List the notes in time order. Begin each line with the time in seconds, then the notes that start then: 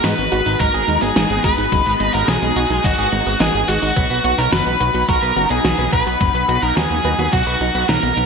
Already playing: G#3 B3 D#4 F#4 A#5
0.04 G#2 G#3 D#4 B4, snare, closed hi-hat
0.18 G#1 G#3, closed hi-hat
0.32 G#1 D#4 F#4, closed hi-hat
0.46 G#1 G#3 D#4, closed hi-hat
0.60 G#1 F#3 D#4 A#4, kick, closed hi-hat
0.74 G#1 G#4, closed hi-hat
0.88 D#2 G#3 D#4, closed hi-hat
1.02 G#1 G#3 B3 G#4, closed hi-hat
1.16 G#1 G#3 D#4, snare, closed hi-hat
1.30 G#1 G#4, closed hi-hat
1.44 G#1 G#3 F#4 B4, kick, closed hi-hat
1.58 G#1 G#3 D#4, closed hi-hat
1.72 F#1 F#3 G#3, kick, closed hi-hat
1.86 G#1 G#3, closed hi-hat
2.00 G#1 G#3 D#4, closed hi-hat
2.14 G#1 G#3 B3 A#4, closed hi-hat
2.28 B1 G#3 D#4 G#4, snare, closed hi-hat
2.42 B1 G#3, closed hi-hat
2.56 B1 D#4 F#4, closed hi-hat
2.70 B1 G#3 D#4, closed hi-hat
2.84 G#1 F#3 D#4 F#4, kick, closed hi-hat
2.98 G#1 G#4, closed hi-hat
3.12 G#1 G#3 D#4, closed hi-hat
3.26 G#1 G#3 B3, closed hi-hat
3.40 G#1 G#3 D#4 G#4, snare, closed hi-hat
3.54 G#1 G#4, closed hi-hat
3.68 G#1 G#3 F#4, closed hi-hat
3.82 G#1 G#3 D#4, closed hi-hat
3.96 B1 F#3 B3 D#4, kick, closed hi-hat
4.10 B1 B3, closed hi-hat
4.24 B1 B3 F#4, closed hi-hat
4.38 B1 B3 D#4 A#4, closed hi-hat
4.52 F#1 B3 F#4 B4, snare, closed hi-hat
4.66 B1 B3, closed hi-hat
4.80 B1 F#4 B4, closed hi-hat
4.94 B1 B3 F#4, closed hi-hat
5.08 B1 F#3 F#4 A#4, kick, closed hi-hat
5.22 B1 B4, closed hi-hat
5.36 F#1 B3 F#4, closed hi-hat
5.50 B1 B3 D#4 G#4, closed hi-hat
5.64 B1 B3 F#4, snare, closed hi-hat
5.78 B1 B4, closed hi-hat
5.93 B1 B3 B4, kick, closed hi-hat
6.07 B1 B3 F#4, closed hi-hat
6.21 F#1 F#3 B3, kick, closed hi-hat
6.34 B1 B3, closed hi-hat
6.48 B1 B3 F#4, closed hi-hat
6.63 B1 B3 D#4 A#4, closed hi-hat
6.76 D#2 B3 F#4 G#4, snare, closed hi-hat
6.90 D#2 B3, closed hi-hat
7.05 D#2 F#4 B4, closed hi-hat
7.19 D#2 B3 F#4, closed hi-hat
7.33 B1 F#3 F#4, kick, closed hi-hat
7.47 B1 B4, closed hi-hat
7.61 B1 F#3 D#4, closed hi-hat
7.75 B1 B3 B4, closed hi-hat
7.89 B1 B3 D#4 A#4, snare, closed hi-hat
8.03 B1 F#3 B3, closed hi-hat
8.17 B1 B3 D#4, closed hi-hat